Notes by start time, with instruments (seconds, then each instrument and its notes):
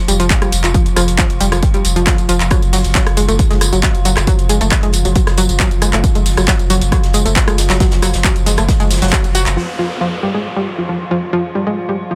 Already playing: synth drone F3 F4
0.08 sub bass F1, synth arpeggio sound G3, closed hi-hat, open hi-hat, tambourine
0.20 sub bass F1, synth arpeggio sound F3, closed hi-hat, tambourine
0.30 kick, snare, clap, closed hi-hat, tambourine
0.42 sub bass F1, synth arpeggio sound G3, cross-stick, closed hi-hat, tambourine
0.52 sub bass F1, closed hi-hat, open hi-hat, tambourine
0.64 sub bass F1, synth arpeggio sound F3, clap, closed hi-hat, tambourine
0.74 synth arpeggio sound F3, kick, closed hi-hat, tambourine
0.86 sub bass F1, closed hi-hat, tambourine
0.96 sub bass F1, synth arpeggio sound F3, cross-stick, closed hi-hat, open hi-hat, tambourine
1.08 sub bass F1, closed hi-hat, tambourine
1.18 synth arpeggio sound F3, kick, snare, clap, closed hi-hat, tambourine
1.30 sub bass F1, closed hi-hat, tambourine
1.41 sub bass F1, synth arpeggio sound G3, closed hi-hat, open hi-hat, tambourine
1.52 sub bass F1, synth arpeggio sound F3, cross-stick, closed hi-hat, tambourine
1.63 kick, closed hi-hat, tambourine
1.74 sub bass F1, synth arpeggio sound G3, closed hi-hat, tambourine
1.85 sub bass F1, closed hi-hat, open hi-hat, tambourine
1.96 sub bass F1, synth arpeggio sound F3, closed hi-hat, tambourine
2.07 synth arpeggio sound F3, kick, cross-stick, snare, clap, closed hi-hat, tambourine
2.18 sub bass F1, closed hi-hat, tambourine
2.29 sub bass F1, synth arpeggio sound F3, closed hi-hat, open hi-hat, tambourine
2.40 sub bass F1, clap, closed hi-hat, tambourine
2.50 synth arpeggio sound F#3, kick, cross-stick, closed hi-hat, tambourine
2.62 sub bass F#1, closed hi-hat, tambourine
2.73 sub bass F#1, synth arpeggio sound F#3, snare, open hi-hat, tambourine
2.84 sub bass F#1, closed hi-hat, tambourine
2.95 synth arpeggio sound F#3, kick, snare, clap, closed hi-hat, tambourine
3.06 sub bass F#1, cross-stick, closed hi-hat, tambourine
3.17 sub bass F#1, synth arpeggio sound G#3, closed hi-hat, open hi-hat, tambourine
3.29 sub bass F#1, synth arpeggio sound A3, closed hi-hat, tambourine
3.39 kick, closed hi-hat, tambourine
3.50 sub bass F#1, synth arpeggio sound G#3, snare, closed hi-hat, tambourine
3.61 sub bass F#1, cross-stick, closed hi-hat, open hi-hat, tambourine
3.73 sub bass F#1, synth arpeggio sound F#3, closed hi-hat, tambourine
3.83 synth arpeggio sound F#3, kick, snare, clap, closed hi-hat
3.95 sub bass F#1, closed hi-hat, tambourine
4.05 sub bass F#1, synth arpeggio sound F#3, closed hi-hat, open hi-hat, tambourine
4.17 sub bass F#1, cross-stick, clap, closed hi-hat, tambourine
4.27 synth arpeggio sound F#3, kick, closed hi-hat, tambourine
4.39 sub bass F#1, closed hi-hat, tambourine
4.49 sub bass F#1, synth arpeggio sound G#3, closed hi-hat, open hi-hat, tambourine
4.61 sub bass F#1, synth arpeggio sound A3, closed hi-hat, tambourine
4.71 kick, cross-stick, snare, clap, closed hi-hat, tambourine
4.83 sub bass F#1, synth arpeggio sound G#3, closed hi-hat, tambourine
4.92 sub bass F#1, closed hi-hat, open hi-hat, tambourine
5.05 sub bass F#1, synth arpeggio sound F#3, closed hi-hat, tambourine
5.15 synth arpeggio sound F#3, kick, closed hi-hat, tambourine
5.27 sub bass F#1, cross-stick, snare, closed hi-hat, tambourine
5.37 sub bass F#1, synth arpeggio sound F#3, closed hi-hat, open hi-hat, tambourine
5.49 sub bass F#1, closed hi-hat, tambourine
5.59 synth arpeggio sound F#3, kick, snare, clap, closed hi-hat, tambourine
5.71 sub bass F#1, closed hi-hat, tambourine
5.82 sub bass F#1, synth arpeggio sound G#3, cross-stick, closed hi-hat, open hi-hat, tambourine
5.93 sub bass F#1, synth arpeggio sound A3, clap, closed hi-hat, tambourine
6.04 kick, closed hi-hat, tambourine
6.15 sub bass F#1, synth arpeggio sound G#3, closed hi-hat, tambourine
6.26 sub bass F#1, snare, open hi-hat, tambourine
6.37 sub bass F#1, synth arpeggio sound F#3, cross-stick, closed hi-hat, tambourine
6.48 synth arpeggio sound F#3, kick, snare, clap, closed hi-hat, tambourine
6.59 sub bass F#1, closed hi-hat, tambourine
6.70 sub bass F#1, synth arpeggio sound F#3, closed hi-hat, open hi-hat, tambourine
6.81 sub bass F#1, closed hi-hat, tambourine
6.92 synth arpeggio sound F#3, kick, cross-stick, closed hi-hat, tambourine
7.03 sub bass F#1, snare, closed hi-hat, tambourine
7.13 sub bass F#1, synth arpeggio sound G#3, closed hi-hat, open hi-hat, tambourine
7.25 sub bass F#1, synth arpeggio sound A3, closed hi-hat, tambourine
7.36 kick, snare, clap, closed hi-hat, tambourine
7.48 sub bass F#1, synth arpeggio sound G#3, cross-stick, closed hi-hat, tambourine
7.58 sub bass F#1, snare, closed hi-hat, open hi-hat, tambourine
7.70 sub bass F#1, synth arpeggio sound F#3, snare, clap, closed hi-hat, tambourine
7.80 synth arpeggio sound F#3, kick, snare, closed hi-hat, tambourine
7.91 sub bass F#1, snare, closed hi-hat, tambourine
8.02 sub bass F#1, synth arpeggio sound F#3, cross-stick, snare, closed hi-hat, open hi-hat, tambourine
8.13 sub bass F#1, snare, closed hi-hat, tambourine
8.24 synth arpeggio sound F#3, kick, snare, clap, closed hi-hat, tambourine
8.36 sub bass F#1, closed hi-hat, tambourine
8.46 sub bass F#1, synth arpeggio sound G#3, snare, closed hi-hat, open hi-hat, tambourine
8.57 sub bass F#1, synth arpeggio sound A3, cross-stick, closed hi-hat, tambourine
8.69 kick, snare, closed hi-hat, tambourine
8.80 sub bass F#1, synth arpeggio sound G#3, snare, closed hi-hat, tambourine
8.91 sub bass F#1, snare, closed hi-hat, open hi-hat, tambourine
8.96 snare, closed hi-hat
9.02 sub bass F#1, synth arpeggio sound F#3, snare, closed hi-hat, tambourine
9.08 snare, closed hi-hat
9.13 synth arpeggio sound F#3, kick, cross-stick, snare, clap, closed hi-hat, tambourine
9.24 sub bass F#1, closed hi-hat, tambourine
9.35 sub bass F#1, synth arpeggio sound F#4, closed hi-hat, open hi-hat, tambourine
9.46 sub bass F#1, clap, closed hi-hat, tambourine
9.57 synth drone F3 F4, synth arpeggio sound F3, downlifter
9.79 synth arpeggio sound F3
10.01 synth arpeggio sound F3
10.23 synth arpeggio sound G3
10.34 synth arpeggio sound G#3
10.56 synth arpeggio sound G3
10.79 synth arpeggio sound F3
10.89 synth arpeggio sound F3
11.11 synth arpeggio sound F3
11.33 synth arpeggio sound F3
11.55 synth arpeggio sound G3
11.67 synth arpeggio sound G#3
11.89 synth arpeggio sound G3
12.11 synth arpeggio sound F3